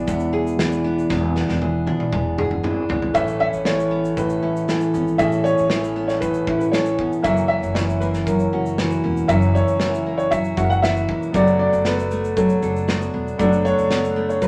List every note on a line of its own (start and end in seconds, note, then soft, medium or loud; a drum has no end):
0.00 0.59 E3 medium
0.00 1.86 B3 medium
0.00 0.58 D4 soft
0.00 0.32 G#4 medium
0.00 0.33 G#4 medium
0.07 1.06 E1 medium
0.07 1.10 E2 medium
0.07 0.84 B3 medium
0.07 kick medium
0.07 shaker medium
0.20 shaker soft
0.33 1.60 G#4 medium
0.33 2.37 G#4 medium
0.47 shaker soft
0.59 1.61 E3 medium
0.59 1.34 D4 medium
0.59 snare loud
0.59 shaker medium
0.72 shaker soft
0.84 1.09 B3 medium
0.84 2.88 D4 medium
0.99 shaker soft
1.10 1.45 E1 medium
1.10 2.11 E2 medium
1.10 2.12 B3 medium
1.10 kick loud
1.10 snare medium
1.36 1.85 D4 medium
1.36 snare medium
1.49 1.84 E1 medium
1.49 snare soft
1.61 2.63 E3 medium
1.61 2.37 G#4 medium
1.61 high tom medium
1.86 2.10 B1 medium
1.86 3.43 B3 medium
1.86 2.62 D4 medium
1.86 high tom medium
2.00 mid tom medium
2.12 2.60 E1 medium
2.12 3.20 E2 medium
2.12 2.89 B3 medium
2.12 kick medium
2.12 mid tom medium
2.38 3.14 G#4 medium
2.38 3.20 G#4 medium
2.38 mid tom medium
2.51 mid tom medium
2.63 2.87 G#1 medium
2.63 3.66 E3 medium
2.63 3.20 D4 medium
2.63 mid tom medium
2.89 3.13 G#1 medium
2.89 3.43 B3 soft
2.89 3.20 D4 medium
2.89 floor tom medium
3.02 floor tom medium
3.13 3.50 A1 medium
3.13 4.16 A2 medium
3.13 5.19 E3 medium
3.13 5.15 A3 medium
3.13 5.16 C#4 medium
3.13 3.64 A4 medium
3.13 5.17 B4 medium
3.13 3.39 E5 medium
3.13 kick loud
3.13 shaker medium
3.28 shaker soft
3.40 4.42 C#4 soft
3.40 5.44 C#4 medium
3.40 3.46 E5 loud
3.53 4.39 A1 medium
3.53 shaker soft
3.65 4.68 E3 medium
3.65 4.16 A4 medium
3.65 4.14 C#5 medium
3.65 snare loud
3.65 shaker medium
3.80 shaker soft
3.91 5.95 B3 medium
4.05 shaker soft
4.17 5.18 A2 medium
4.17 4.67 A4 medium
4.17 4.90 B4 medium
4.17 kick medium
4.17 shaker medium
4.29 shaker soft
4.42 4.90 A1 medium
4.42 4.93 C#4 medium
4.42 6.48 E4 medium
4.56 shaker soft
4.68 5.71 E3 medium
4.68 5.19 A4 medium
4.68 snare medium
4.68 shaker medium
4.81 shaker soft
4.94 5.18 G#1 medium
4.94 6.99 B3 medium
4.94 5.45 C#4 medium
4.94 shaker soft
5.08 shaker soft
5.18 5.55 A1 loud
5.18 6.21 A2 medium
5.18 7.24 E3 medium
5.18 7.20 A3 medium
5.18 7.21 C#4 soft
5.18 5.70 A4 medium
5.18 5.43 E5 medium
5.18 kick medium
5.18 shaker medium
5.22 7.22 G#4 medium
5.32 shaker medium
5.44 7.50 C#4 medium
5.44 6.47 C#4 medium
5.44 6.06 C#5 loud
5.44 shaker soft
5.58 6.44 A1 medium
5.58 shaker soft
5.70 6.74 E3 medium
5.70 6.20 A4 medium
5.70 snare medium
5.70 shaker medium
5.84 shaker soft
5.96 7.29 B3 medium
6.08 6.13 C#5 medium
6.08 snare soft
6.08 shaker soft
6.20 7.25 A2 medium
6.20 6.72 A4 medium
6.20 6.57 B4 medium
6.20 kick medium
6.20 shaker medium
6.34 shaker soft
6.47 6.95 A1 medium
6.47 6.98 C#4 medium
6.47 8.31 E4 medium
6.47 kick loud
6.59 6.64 B4 medium
6.59 shaker soft
6.72 7.75 E3 medium
6.72 7.24 A4 medium
6.72 7.08 C#5 medium
6.72 snare medium
6.72 shaker medium
6.86 shaker soft
6.99 7.30 B3 soft
6.99 7.50 C#4 medium
6.99 kick medium
7.12 shaker soft
7.22 7.60 F#1 medium
7.22 8.26 F#2 medium
7.22 9.28 E3 medium
7.22 9.24 A#3 medium
7.22 9.26 F#4 soft
7.22 7.76 F#4 medium
7.22 7.47 E5 medium
7.22 kick loud
7.22 shaker medium
7.27 9.26 E5 medium
7.37 shaker soft
7.48 8.52 C#4 medium
7.48 9.54 C#4 medium
7.48 7.75 E5 medium
7.63 8.49 F#1 medium
7.63 shaker soft
7.74 8.78 E3 medium
7.74 8.26 F#4 medium
7.74 7.80 C#5 medium
7.74 snare medium
7.74 shaker medium
7.89 shaker soft
8.00 10.05 A#3 medium
8.00 8.06 B4 medium
8.00 shaker soft
8.14 snare soft
8.14 shaker soft
8.26 9.28 F#2 medium
8.26 8.78 F#4 medium
8.26 8.99 A#4 medium
8.26 kick medium
8.26 shaker medium
8.40 shaker medium
8.53 9.00 F#1 medium
8.53 9.03 C#4 medium
8.53 10.57 F#4 medium
8.66 shaker soft
8.78 9.80 E3 medium
8.78 9.30 F#4 medium
8.78 snare medium
8.78 shaker medium
8.91 shaker soft
9.04 9.27 E1 medium
9.04 11.08 A#3 soft
9.04 9.54 C#4 medium
9.17 shaker soft
9.28 9.65 F#1 loud
9.28 10.30 F#2 medium
9.28 11.34 E3 medium
9.28 10.54 A#3 medium
9.28 10.55 F#4 medium
9.28 9.80 F#4 medium
9.28 9.55 E5 medium
9.28 10.56 E5 medium
9.28 kick medium
9.28 shaker medium
9.42 shaker soft
9.55 10.56 C#4 medium
9.55 11.40 C#4 medium
9.55 10.16 C#5 medium
9.55 shaker soft
9.68 10.53 F#1 medium
9.68 shaker soft
9.80 10.82 E3 medium
9.80 10.31 F#4 medium
9.80 snare loud
9.80 shaker medium
9.94 shaker soft
10.06 11.33 A#3 soft
10.18 10.32 C#5 medium
10.18 shaker soft
10.31 11.39 F#2 medium
10.31 10.82 F#4 medium
10.31 10.71 E5 medium
10.31 kick medium
10.31 shaker medium
10.44 shaker soft
10.56 11.05 F#1 medium
10.56 10.63 G#3 soft
10.56 11.07 C#4 soft
10.56 12.62 F#4 medium
10.56 11.34 F#4 soft
10.56 11.35 E5 soft
10.56 kick loud
10.56 shaker soft
10.63 11.37 A#3 soft
10.70 10.83 F#5 medium
10.70 shaker soft
10.82 11.34 E3 medium
10.82 11.34 F#4 medium
10.82 11.18 E5 medium
10.82 snare loud
10.82 shaker medium
10.96 shaker soft
11.08 11.39 A#3 medium
11.08 11.39 C#4 medium
11.08 kick medium
11.23 shaker soft
11.32 11.70 F#1 loud
11.32 12.35 F#3 medium
11.32 12.10 A3 medium
11.32 13.34 B3 medium
11.32 11.84 F#4 medium
11.32 13.35 A4 medium
11.32 11.58 D5 medium
11.32 kick medium
11.32 shaker medium
11.37 13.36 D5 medium
11.47 shaker soft
11.59 12.62 D4 soft
11.59 13.65 D4 medium
11.59 11.86 D5 medium
11.72 12.58 F#1 medium
11.72 shaker soft
11.85 12.88 B3 medium
11.85 12.35 F#4 medium
11.85 12.38 B4 medium
11.85 snare medium
11.85 shaker medium
11.99 shaker soft
12.11 13.38 A3 medium
12.11 shaker medium
12.25 shaker soft
12.37 13.38 F#3 medium
12.37 12.87 F#4 medium
12.37 13.10 A4 medium
12.37 kick medium
12.37 shaker medium
12.49 shaker soft
12.62 13.10 F#1 medium
12.62 13.13 D4 medium
12.62 14.48 A4 medium
12.62 shaker soft
12.76 shaker soft
12.88 13.13 B3 medium
12.88 13.39 F#4 medium
12.88 snare loud
12.88 shaker medium
13.02 shaker soft
13.13 13.37 E1 medium
13.13 13.90 B3 medium
13.13 13.64 D4 soft
13.28 shaker soft
13.38 13.75 F#1 medium
13.38 14.41 F#3 medium
13.38 14.15 A3 medium
13.38 14.48 B3 medium
13.38 13.89 F#4 medium
13.38 14.48 A4 medium
13.38 13.65 D5 medium
13.38 kick medium
13.38 shaker medium
13.42 14.48 D4 medium
13.53 shaker medium
13.65 14.48 D4 medium
13.65 14.28 C#5 loud
13.65 shaker soft
13.77 14.48 F#1 medium
13.77 shaker soft
13.90 14.48 B3 medium
13.90 14.40 F#4 medium
13.90 snare loud
13.90 shaker medium
14.05 shaker soft
14.16 14.48 A3 medium
14.29 14.42 C#5 medium
14.29 shaker soft
14.42 14.48 F#3 medium
14.42 14.48 F#4 medium
14.42 14.48 B4 medium
14.42 kick medium
14.42 shaker medium